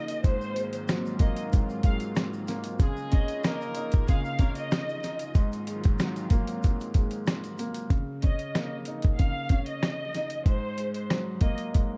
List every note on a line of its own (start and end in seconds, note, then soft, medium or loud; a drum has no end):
0.00 0.22 C#3 medium
0.00 0.25 C#3 medium
0.00 0.27 A#3 medium
0.00 7.86 A#3 medium
0.00 0.26 C#4 medium
0.00 0.22 D#4 medium
0.00 0.27 D#4 loud
0.00 0.22 F4 medium
0.00 0.21 D#5 medium
0.08 closed hi-hat medium
0.08 shaker medium
0.24 1.51 G#2 loud
0.24 2.78 G#2 medium
0.24 2.78 D#3 medium
0.24 2.78 F#3 medium
0.24 2.78 C4 medium
0.24 2.78 F4 loud
0.24 0.71 C5 loud
0.24 kick loud
0.24 closed hi-hat loud
0.24 shaker medium
0.42 shaker soft
0.55 1.83 G#3 medium
0.55 closed hi-hat medium
0.55 shaker soft
0.73 0.87 C5 medium
0.73 closed hi-hat medium
0.73 shaker medium
0.88 2.49 F#3 medium
0.88 cross-stick loud
0.88 snare loud
0.88 closed hi-hat loud
0.88 shaker medium
1.06 shaker medium
1.19 2.47 A#3 medium
1.19 1.36 D#5 medium
1.19 kick loud
1.19 closed hi-hat medium
1.19 shaker medium
1.36 closed hi-hat medium
1.36 shaker medium
1.52 2.80 G#2 medium
1.52 kick medium
1.52 closed hi-hat loud
1.52 shaker medium
1.70 shaker medium
1.83 2.80 G#3 medium
1.83 2.00 F5 medium
1.83 kick medium
1.83 closed hi-hat medium
1.83 shaker medium
2.00 closed hi-hat soft
2.00 shaker medium
2.16 cross-stick medium
2.16 snare loud
2.16 closed hi-hat loud
2.16 shaker medium
2.34 shaker medium
2.48 2.80 A#3 medium
2.48 snare soft
2.48 closed hi-hat medium
2.48 shaker medium
2.64 closed hi-hat medium
2.64 shaker medium
2.79 4.07 C#3 medium
2.79 5.32 C#3 medium
2.79 3.40 G#3 loud
2.79 5.32 D#4 medium
2.79 5.33 F4 loud
2.79 3.40 G#4 loud
2.79 kick loud
2.79 closed hi-hat loud
2.79 shaker medium
2.97 shaker soft
3.11 4.39 C#4 medium
3.11 3.58 D#5 medium
3.11 kick loud
3.11 closed hi-hat medium
3.11 shaker soft
3.28 closed hi-hat medium
3.28 shaker medium
3.43 5.03 A#3 medium
3.43 4.04 A#3 loud
3.43 4.04 A#4 loud
3.43 cross-stick loud
3.43 snare loud
3.43 closed hi-hat loud
3.43 shaker medium
3.61 shaker medium
3.75 5.02 D#4 medium
3.75 closed hi-hat medium
3.75 shaker medium
3.92 kick loud
3.92 closed hi-hat medium
3.92 shaker medium
4.07 5.36 C#3 medium
4.07 4.21 G#3 loud
4.07 4.21 G#4 loud
4.07 4.54 F5 medium
4.07 kick medium
4.07 closed hi-hat loud
4.07 shaker medium
4.25 shaker medium
4.39 4.65 A#3 medium
4.39 5.36 C#4 medium
4.39 4.65 A#4 medium
4.39 kick medium
4.39 closed hi-hat medium
4.39 shaker medium
4.55 5.31 D#5 medium
4.55 closed hi-hat soft
4.55 shaker medium
4.71 cross-stick medium
4.71 snare loud
4.71 closed hi-hat loud
4.71 shaker medium
4.89 shaker medium
5.03 5.35 D#4 medium
5.03 snare soft
5.03 closed hi-hat medium
5.03 shaker medium
5.19 closed hi-hat medium
5.19 shaker medium
5.35 6.61 G#2 loud
5.35 7.88 G#2 medium
5.35 7.88 D#3 medium
5.35 7.88 F#3 medium
5.35 7.88 C4 medium
5.35 7.88 F4 loud
5.35 kick loud
5.35 closed hi-hat medium
5.35 shaker medium
5.52 closed hi-hat soft
5.52 shaker soft
5.66 6.94 G#3 medium
5.66 closed hi-hat medium
5.66 shaker soft
5.84 kick loud
5.84 closed hi-hat medium
5.84 shaker medium
5.99 7.59 F#3 medium
5.99 cross-stick loud
5.99 snare loud
5.99 closed hi-hat loud
5.99 shaker medium
6.16 closed hi-hat soft
6.16 shaker medium
6.30 7.58 A#3 loud
6.30 kick loud
6.30 closed hi-hat medium
6.30 shaker medium
6.47 closed hi-hat medium
6.47 shaker medium
6.63 7.91 G#2 medium
6.63 kick medium
6.63 closed hi-hat loud
6.63 shaker medium
6.80 closed hi-hat soft
6.80 shaker medium
6.94 7.91 G#3 medium
6.94 kick medium
6.94 closed hi-hat medium
6.94 shaker medium
7.11 closed hi-hat soft
7.11 shaker medium
7.27 cross-stick medium
7.27 snare loud
7.27 closed hi-hat loud
7.27 shaker medium
7.44 closed hi-hat soft
7.44 shaker soft
7.58 7.91 A#3 medium
7.58 closed hi-hat medium
7.58 shaker medium
7.75 closed hi-hat medium
7.75 shaker medium
7.90 9.18 C#3 medium
7.90 kick loud
7.90 closed hi-hat medium
8.22 9.50 C#4 medium
8.22 8.69 D#5 medium
8.22 kick medium
8.22 closed hi-hat medium
8.39 closed hi-hat medium
8.55 10.14 A#3 medium
8.55 cross-stick loud
8.55 snare loud
8.55 closed hi-hat loud
8.85 10.13 D#4 medium
8.85 closed hi-hat medium
9.02 kick loud
9.02 closed hi-hat soft
9.17 10.46 C#3 medium
9.17 9.64 F5 medium
9.17 kick medium
9.17 closed hi-hat loud
9.49 10.47 C#4 medium
9.49 kick medium
9.49 closed hi-hat medium
9.66 10.42 D#5 medium
9.66 closed hi-hat soft
9.83 cross-stick medium
9.83 snare loud
9.83 closed hi-hat medium
10.14 10.46 D#4 medium
10.14 snare soft
10.14 closed hi-hat medium
10.30 closed hi-hat medium
10.46 11.72 G#2 medium
10.46 10.93 C5 loud
10.46 kick loud
10.46 closed hi-hat medium
10.77 11.98 G#3 medium
10.77 closed hi-hat medium
10.94 11.08 C5 medium
10.94 closed hi-hat medium
11.10 11.98 F#3 medium
11.10 cross-stick loud
11.10 snare loud
11.10 closed hi-hat loud
11.41 11.98 A#3 loud
11.41 11.57 D#5 medium
11.41 kick medium
11.41 closed hi-hat medium
11.58 closed hi-hat medium
11.73 11.98 G#2 medium
11.73 kick medium
11.73 closed hi-hat loud